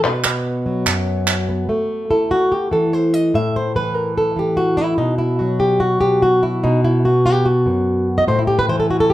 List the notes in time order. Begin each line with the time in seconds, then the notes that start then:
0.04 B2 B4
0.24 B3, clap
0.66 F#3
0.86 F#2, clap
1.27 clap
1.49 B3
1.69 A3
2.10 E4 A4
2.31 F#4
2.52 G4
2.71 E3 A4
2.93 C5
3.14 D#5
3.34 A2 E5
3.56 C5
3.75 E3 B4
3.96 A#4
4.18 A4
4.36 E3 G4
4.57 F#4
4.77 E4
4.98 B2 D#4
5.18 E4
5.39 F#3 F#4
5.60 G4
5.80 F#4
6.01 B2 G4
6.22 F#4
6.43 E4
6.64 B2 D#4
6.84 E4
7.05 B3 F#4
7.26 G4
7.46 F#4
7.66 F#2
8.18 D#5
8.28 A2 C5
8.39 E4
8.47 G4
8.59 B4
8.69 E3 C5
8.80 A4
8.90 F#4
9.00 A4
9.10 G4